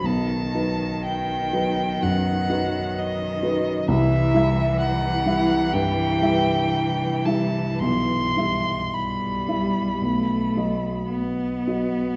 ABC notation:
X:1
M:4/4
L:1/8
Q:1/4=60
K:Bphr
V:1 name="Violin"
a2 g2 f2 ^d2 | e2 f2 g3 a | c'2 b4 z2 |]
V:2 name="Grand piano"
B,,, [F,^DB]2 [F,DB] F,, [F,DB]2 [F,DB] | C,, [G,Ee]2 [G,Ee] G,, [G,Ee]2 [G,Ee] | B,,, [G,Ee]2 [G,Ee] B,,, [F,F^d]2 [F,Fd] |]
V:3 name="Cello" clef=bass
^D,8 | E,8- | E,2 G,2 A,2 B,2 |]